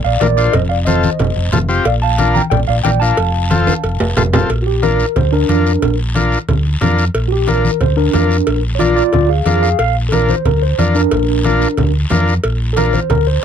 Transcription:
0.04 A#1 D5 F5
0.20 A#1 D4 F4 A#4 D5, cowbell, high conga, low timbale, short guiro
0.37 D4 F4 A#4 C5 D5, short guiro
0.53 F1 D#5, cowbell, low conga, long guiro
0.69 D5 F5
0.85 C4 F4 A4 C5 D#5, cowbell, high conga, short guiro
1.03 high conga, short guiro
1.19 F1, cowbell, low conga, long guiro
1.36 F1
1.52 F1 C4 F4 A4, cowbell, high conga, low conga, low timbale, short guiro
1.69 C4 F4 G4, short guiro
1.85 A#1 D5 F5, cowbell, long guiro
2.02 F5 A5
2.18 D4 F4 A#4, cowbell, high conga, short guiro
2.34 G5 A#5, high conga, short guiro
2.50 A#1 D5 G5, cowbell, low conga, long guiro
2.68 A#1 D5 F5
2.84 A#1 D4 F4 A#4 D5 G5, cowbell, high conga, short guiro
3.00 D4 F4 A#4 F5 A5, short guiro
3.17 F1, cowbell, long guiro
3.50 C4 F4 A4, cowbell, high conga, short guiro
3.67 high conga, high timbale, short guiro
3.84 F1, cowbell, long guiro
4.00 F1, low timbale
4.17 F1 C4 F4 A4, cowbell, low conga, low timbale, short guiro
4.33 C4 F4 A4, low conga, low timbale, short guiro
4.50 A#1, cowbell, long guiro
4.62 F#4
4.67 G4
4.82 D4 F4 A#4, cowbell, high conga, short guiro
4.99 short guiro
5.16 D2 C5, cowbell, low conga, long guiro
5.32 D4 A#4
5.49 F2 D4 F4 A#4, cowbell, high conga, short guiro
5.66 short guiro
5.82 A#1, cowbell, low conga, long guiro
6.15 D4 F4 A#4, cowbell, high conga, short guiro
6.32 short guiro
6.48 D2, cowbell, low conga, long guiro
6.81 F2 D4 F4 A#4, cowbell, high conga, low conga, short guiro
6.98 short guiro
7.15 A#1, cowbell, long guiro
7.28 F#4
7.32 G4
7.47 D4 F4 A#4, cowbell, high conga, short guiro
7.65 high conga, short guiro
7.81 D2 C5, cowbell, low conga, long guiro
7.97 D4 A#4
8.13 F2 D4 F4 A#4, cowbell, high conga, low timbale, short guiro
8.31 short guiro
8.47 A#1, cowbell, long guiro
8.75 C#5
8.79 D4 F4 A#4 D5, cowbell, high conga, short guiro
8.96 F4 D5, short guiro
9.12 D2 F4 D5, cowbell, low conga, long guiro
9.29 G#4 F5
9.45 F2 D4 F4 G#4 A#4 F5, cowbell, high conga, short guiro
9.62 G#4 F5, short guiro
9.79 A#1 F5, cowbell, long guiro
10.09 D4 F4 A4 A#4, cowbell, high conga, short guiro
10.13 A#4
10.29 C5, high conga, short guiro
10.45 D2 A#4, cowbell, low conga, long guiro
10.62 C5
10.78 F2 D4 F4 A#4 D5, cowbell, high conga, short guiro
10.95 D4 A#4, short guiro
11.11 A#1, cowbell, low conga, long guiro
11.44 D4 F4 A#4, cowbell, high conga, short guiro
11.61 short guiro
11.77 D2, cowbell, low conga, long guiro
12.10 F2 D4 F4 A#4, cowbell, high conga, low timbale, short guiro
12.28 short guiro
12.44 A#1, cowbell, long guiro
12.73 D4 F4 A4, cowbell, short guiro
12.77 A#4, high conga
12.93 C5, high conga, short guiro
13.10 D2 A#4, cowbell, low conga, long guiro
13.27 C5

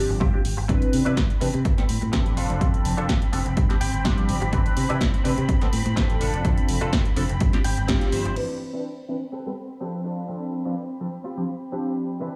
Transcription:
Already playing: F3 C4 D4 G4
0.09 G1, muted clean electric guitar stroke
0.20 G2 C4 F4 G4 G5, kick
0.33 F3 C4 D4 G4
0.45 G1, open hi-hat
0.57 G1, muted clean electric guitar stroke
0.68 C2 E3 C4 D4 B4 B5, muted clean electric guitar stroke, kick, closed hi-hat
0.82 muted clean electric guitar stroke, closed hi-hat
0.93 C3, open hi-hat
1.05 C3 E3 C4 D4 E4 B4, closed hi-hat
1.17 C2, kick, snare, closed hi-hat
1.30 closed hi-hat
1.40 C3 E3 C4 D4 B4, muted clean electric guitar stroke, open hi-hat
1.54 C3, muted clean electric guitar stroke, closed hi-hat
1.65 A1, muted clean electric guitar stroke, kick, closed hi-hat
1.77 G3 B3 C4 A4, snare, closed hi-hat
1.89 A2, open hi-hat
2.01 A2, muted clean electric guitar stroke, closed hi-hat
2.12 A1 F3 C4 D4 G4 A4 B4, kick, snare, closed hi-hat
2.26 closed hi-hat
2.37 F1 D4 F4 A4, open hi-hat
2.50 F1, closed hi-hat
2.60 F2 F3 C4 D4 A4, kick, closed hi-hat
2.73 muted clean electric guitar stroke, closed hi-hat
2.85 F1, open hi-hat
2.97 F1 F3 C4 D4 F4 A4, closed hi-hat
3.09 F2, kick, snare, closed hi-hat
3.22 closed hi-hat
3.32 F1 F3 C4 D4 A4, muted clean electric guitar stroke, open hi-hat
3.45 F1, muted clean electric guitar stroke, closed hi-hat
3.57 G2, muted clean electric guitar stroke, kick, closed hi-hat
3.69 F3 C4 D4 G4, snare, closed hi-hat
3.81 G1 G5, open hi-hat
3.93 G1, muted clean electric guitar stroke, closed hi-hat
4.04 G2 F3 C4 D4 F4 G4 D5, kick, snare, closed hi-hat
4.18 closed hi-hat
4.29 G1, open hi-hat
4.41 G1, muted clean electric guitar stroke, closed hi-hat
4.52 C2 E3 C4 D4 B4, muted clean electric guitar stroke, kick, closed hi-hat
4.65 muted clean electric guitar stroke, closed hi-hat
4.77 C3, open hi-hat
4.89 C3 E3 C4 D4 E4 B4, closed hi-hat
5.01 C2, kick, snare, closed hi-hat
5.14 closed hi-hat
5.24 C3 E3 C4 D4 B4, muted clean electric guitar stroke, open hi-hat
5.37 C3, muted clean electric guitar stroke, closed hi-hat
5.48 A1, muted clean electric guitar stroke, kick, closed hi-hat
5.61 G3 B3 C4 A4, snare, closed hi-hat
5.73 A2, open hi-hat
5.85 A2, muted clean electric guitar stroke, closed hi-hat
5.96 A1 F3 C4 D4 G4 A4 B4, kick, snare, closed hi-hat
6.10 closed hi-hat
6.20 F1 D4 F4 A4, open hi-hat
6.33 F1, closed hi-hat
6.44 F2 F3 C4 D4 A4, kick, closed hi-hat
6.57 muted clean electric guitar stroke, closed hi-hat
6.69 F1, open hi-hat
6.81 F1 F3 C4 D4 F4 A4, closed hi-hat
6.93 F2, kick, snare, closed hi-hat
7.05 closed hi-hat
7.16 F1 F3 C4 D4 A4, muted clean electric guitar stroke, open hi-hat
7.29 F1, muted clean electric guitar stroke, closed hi-hat
7.40 G2, muted clean electric guitar stroke, kick, closed hi-hat
7.53 F3 C4 D4 G4, snare, closed hi-hat
7.64 G1 G5, open hi-hat
7.77 G1, muted clean electric guitar stroke, closed hi-hat
7.87 G2 F3 C4 D4 F4 G4 F5, kick, snare, closed hi-hat
8.01 closed hi-hat
8.12 G1 C5, open hi-hat
8.25 G1, muted clean electric guitar stroke, closed hi-hat
8.36 E3 C4 D4 E4 B4 B5, crash
8.73 E3 C4 D4 E4 B4
9.08 E3 C4 D4 B4, muted clean electric guitar stroke
9.32 C4 G4 A4 B4
9.46 G3 B3 C4 A4
9.80 F3 C4 D4 G4 A4 B4
10.04 D4 F4 A4
10.28 F3 C4 D4 A4
10.65 F3 C4 D4 F4 A4 B4
11.00 F3 C4 D4 A4, muted clean electric guitar stroke
11.24 C4 F4 G4
11.37 F3 C4 D4 G4
11.72 F3 C4 D4 F4 G4
12.20 E3 C4 D4 E4 B4

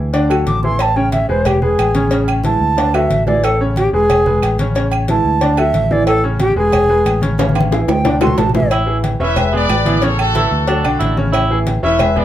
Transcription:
Already playing: D2
0.13 D3 D4 D5, cowbell, high conga, low agogo
0.29 F#3 F#4 A4, high conga, low agogo, claves
0.47 A1 D6, cowbell, high conga
0.63 E3 E4 G#4 C6, high conga
0.79 A5, cowbell, high conga, low agogo, claves
0.96 C#3 C#4 C#5 G5, high conga
1.12 E5, cowbell, high conga, low agogo
1.29 E1 G#3 G#4 B4 C5, high conga
1.45 G4, cowbell, high conga, low conga, low agogo, claves
1.62 G#3 G#4 B4, high conga, low conga
1.78 A1, cowbell, high conga, low agogo, claves
1.94 C#3 C#4 C#5, cowbell, high conga
2.11 C#3 C#4 C#5, cowbell, high conga, low agogo
2.28 high conga, low agogo, claves
2.44 E3 G#3 E4 A5, cowbell, high conga
2.60 D2, high conga
2.77 D3 D4 D5, cowbell, high conga, high timbale, low agogo
2.94 F#3 F#4 A4 E5, high conga, high timbale, low agogo, claves
3.10 A1, cowbell, high conga
3.27 E3 E4 G#4 D5, high conga, low timbale
3.43 A4, cowbell, high conga, low agogo, claves
3.60 C#3 C#4 C#5, high conga
3.76 G4, cowbell, high conga, low agogo
3.93 E1 G#3 G#4 B4, high conga
4.10 cowbell, high conga, low conga, low agogo, claves
4.26 G#3 G#4 B4, high conga, low conga
4.42 A1, cowbell, high conga, low agogo, claves
4.58 C#3 C#4 C#5, cowbell, high conga
4.75 C#3 C#4 C#5, cowbell, high conga, low agogo
4.92 high conga, low agogo, claves
5.08 E3 G#3 E4 A5, cowbell, high conga
5.25 D2, high conga
5.41 D3 D4 D5, cowbell, high conga, low agogo
5.57 F#3 F#4 A4 E5, high conga, low agogo, claves
5.73 A1, cowbell, high conga
5.91 E3 E4 G#4 D5, high conga
6.07 A4, cowbell, low agogo, claves
6.23 C#3 C#4 C#5, high conga
6.40 G4, cowbell, high conga, low agogo
6.56 E1 G#3 G#4 B4, high conga
6.72 cowbell, high conga, low conga, low agogo, claves
6.89 G#3 G#4 B4, high conga
7.05 A1, cowbell, high conga, low agogo, claves
7.21 C#3 C#4 C#5, cowbell, high conga
7.38 C#3 C#4 C#5, cowbell, high bongo, high conga, high timbale, low agogo
7.49 high conga
7.55 high timbale, low agogo, claves
7.61 high conga
7.71 E3 E4 G#4, cowbell, high bongo, high timbale
7.87 D2 G5, low bongo, low timbale
8.04 D3 D4 D5, cowbell, low bongo, low conga, low agogo
8.21 F#3 F#4 A4 C6, low bongo, low timbale, low agogo, claves
8.27 low conga
8.37 A1 A5, cowbell, low bongo, low conga, low timbale
8.49 low conga
8.54 E3 E4 G#4 E5, low bongo, low timbale
8.60 low conga
8.71 E4, cowbell, high conga, low agogo, claves
8.86 E3 E4 G#4, high conga
9.04 cowbell, high conga, low agogo
9.20 E1 E3 C#4 E4 B4 E5, high conga
9.36 G#3 G#4 B4, cowbell, high conga, low conga, low agogo, claves
9.52 G#3 B3 G#4 B4 D5, high conga
9.69 A1, cowbell, high conga, low timbale, low agogo, claves
9.85 E3 B3 E4 G#4, cowbell, high conga
10.02 C#3 C#4 A4 C#5, cowbell, high conga, low agogo
10.19 F#4 A4, high conga, low agogo, claves
10.34 E3 E4 A4, cowbell, high conga
10.51 D2, high conga
10.68 F#3 D4 F#4 A4, cowbell, high conga, low agogo
10.84 B1 D3 D4 D5, high conga, low agogo, claves
10.99 A1 E4, cowbell, high conga
11.17 C#3 C#4 C#5, high conga
11.32 E4, cowbell, low agogo, claves
11.50 E3 E4 G#4, high conga
11.67 cowbell, high conga, low agogo
11.83 E1 E3 C#4 E4 B4 E5, high conga
11.99 G#3 G#4 B4, cowbell, high conga, low conga, low agogo, claves
12.16 G#3 B3 G#4 B4 D5, high conga, low conga

